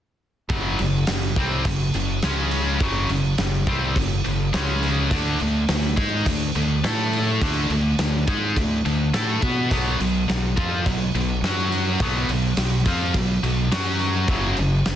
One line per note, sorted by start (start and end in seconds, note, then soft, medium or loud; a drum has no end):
0.49 0.77 F#1 medium
0.49 0.78 F#2 medium
0.49 0.78 C#3 medium
0.49 0.79 F#3 loud
0.49 kick loud
0.49 crash medium
0.79 1.06 F#1 medium
0.79 1.03 F#2 medium
0.79 1.03 C#3 medium
0.79 crash medium
1.07 1.35 F#1 medium
1.07 1.32 F#2 medium
1.07 1.32 C#3 medium
1.07 snare loud
1.07 crash medium
1.36 1.63 C2 loud
1.36 1.65 C3 loud
1.36 1.66 G3 loud
1.36 1.65 C4 loud
1.36 kick loud
1.36 crash medium
1.65 1.92 F#1 medium
1.65 1.89 F#2 medium
1.65 1.90 C#3 medium
1.65 kick medium
1.65 crash medium
1.94 2.21 F#1 medium
1.94 2.18 F#2 medium
1.94 2.18 C#3 medium
1.94 crash medium
2.22 2.77 C#2 medium
2.22 2.80 C#3 loud
2.22 2.81 G#3 loud
2.22 2.81 C#4 loud
2.22 snare loud
2.22 crash medium
2.51 crash medium
2.80 3.08 F#1 medium
2.80 3.09 F#2 medium
2.80 3.09 C#3 medium
2.80 3.10 F#3 loud
2.80 kick loud
2.80 crash medium
3.09 3.37 F#1 medium
3.09 3.33 F#2 medium
3.09 3.33 C#3 medium
3.09 crash medium
3.38 3.65 F#1 medium
3.38 3.62 F#2 medium
3.38 3.62 C#3 medium
3.38 snare loud
3.38 crash medium
3.67 3.94 C2 loud
3.67 3.96 C3 medium
3.67 3.96 G3 loud
3.67 3.96 C4 loud
3.67 kick loud
3.67 crash medium
3.96 4.23 F#1 medium
3.96 4.19 F#2 medium
3.96 4.19 C#3 medium
3.96 kick medium
3.96 crash medium
4.24 4.52 F#1 medium
4.24 4.48 F#2 medium
4.24 4.48 C#3 medium
4.24 crash medium
4.53 5.08 C#2 medium
4.53 5.10 C#3 loud
4.53 5.11 G#3 loud
4.53 5.11 C#4 loud
4.53 snare loud
4.53 crash medium
4.83 crash medium
5.11 5.38 D2 medium
5.11 5.39 D3 medium
5.11 5.40 A3 loud
5.11 5.40 D4 loud
5.11 kick loud
5.11 crash medium
5.40 5.68 D2 medium
5.40 5.63 D3 medium
5.40 5.64 A3 medium
5.40 crash medium
5.68 5.96 D2 medium
5.68 5.92 D3 medium
5.68 5.92 A3 medium
5.68 snare loud
5.68 crash medium
5.96 6.25 G#2 medium
5.96 6.25 G#3 medium
5.96 6.26 D#4 loud
5.96 6.26 G#4 loud
5.96 kick loud
5.96 crash medium
6.26 6.53 D2 medium
6.26 6.50 D3 medium
6.26 6.50 A3 medium
6.26 kick medium
6.26 crash medium
6.55 6.82 D2 medium
6.55 6.79 D3 medium
6.55 6.79 A3 medium
6.55 crash medium
6.84 7.38 A2 medium
6.84 7.41 A3 medium
6.84 7.41 E4 loud
6.84 7.41 A4 loud
6.84 snare loud
6.84 crash medium
7.13 crash medium
7.41 7.68 D2 medium
7.41 7.70 D3 loud
7.41 7.70 A3 loud
7.41 7.70 D4 loud
7.41 kick loud
7.41 crash medium
7.70 7.97 D2 medium
7.70 7.94 D3 medium
7.70 7.94 A3 medium
7.70 crash medium
7.99 8.26 D2 medium
7.99 8.23 D3 medium
7.99 8.23 A3 medium
7.99 snare loud
7.99 crash medium
8.27 8.55 G#2 medium
8.27 8.56 G#3 medium
8.27 8.56 D#4 medium
8.27 8.56 G#4 loud
8.27 kick loud
8.27 crash medium
8.56 8.83 D2 medium
8.56 8.80 D3 medium
8.56 8.80 A3 medium
8.56 kick medium
8.56 crash medium
8.85 9.12 D2 medium
8.85 9.08 D3 medium
8.85 9.09 A3 medium
8.85 crash medium
9.14 9.41 A2 medium
9.14 9.42 A3 medium
9.14 9.42 E4 loud
9.14 9.42 A4 loud
9.14 snare loud
9.14 crash medium
9.42 9.69 B2 loud
9.42 9.70 B3 medium
9.42 9.71 F#4 loud
9.42 9.71 B4 loud
9.42 kick loud
9.42 crash medium
9.71 9.98 B1 medium
9.71 9.99 B2 medium
9.71 9.99 F#3 loud
9.71 10.00 B3 loud
9.71 kick loud
9.71 crash medium
10.00 10.27 B1 medium
10.00 10.23 B2 medium
10.00 10.23 F#3 medium
10.00 crash medium
10.28 10.56 B1 medium
10.28 10.51 B2 medium
10.28 10.51 F#3 medium
10.28 snare loud
10.28 crash medium
10.56 10.84 F2 loud
10.56 10.85 F3 medium
10.56 10.85 C4 loud
10.56 10.85 F4 loud
10.56 kick loud
10.56 crash medium
10.86 11.13 B1 medium
10.86 11.09 B2 medium
10.86 11.09 F#3 medium
10.86 kick medium
10.86 crash medium
11.14 11.41 B1 medium
11.14 11.38 B2 medium
11.14 11.38 F#3 medium
11.14 crash medium
11.42 11.96 F#2 medium
11.42 12.00 F#3 medium
11.42 12.00 C#4 medium
11.42 12.00 F#4 loud
11.42 snare loud
11.42 crash medium
11.72 crash medium
12.00 12.27 B1 medium
12.00 12.29 B2 loud
12.00 12.29 F#3 loud
12.00 12.29 B3 loud
12.00 kick loud
12.00 crash medium
12.28 12.55 B1 medium
12.28 12.52 B2 medium
12.28 12.53 F#3 medium
12.28 crash medium
12.57 12.84 B1 medium
12.57 12.81 B2 medium
12.57 12.81 F#3 medium
12.57 snare loud
12.57 crash medium
12.86 13.13 F2 loud
12.86 13.14 F3 loud
12.86 13.14 C4 medium
12.86 13.14 F4 loud
12.86 kick loud
12.86 crash medium
13.14 13.41 B1 medium
13.14 13.37 B2 medium
13.14 13.37 F#3 medium
13.14 kick loud
13.14 crash medium
13.43 13.69 B1 medium
13.43 13.66 B2 medium
13.43 13.66 F#3 medium
13.43 crash medium
13.72 14.25 F#2 loud
13.72 14.28 F#3 loud
13.72 14.28 C#4 loud
13.72 14.28 F#4 loud
13.72 snare loud
13.72 crash medium
14.00 crash medium
14.28 14.55 F#1 medium
14.28 14.56 F#2 medium
14.28 14.57 C#3 loud
14.28 14.57 F#3 loud
14.28 kick loud
14.28 crash medium
14.57 14.84 F#1 medium
14.57 14.81 F#2 medium
14.57 14.81 C#3 medium
14.57 crash medium
14.85 14.96 F#1 medium
14.85 14.96 F#2 medium
14.85 14.96 C#3 medium
14.85 snare loud
14.85 crash medium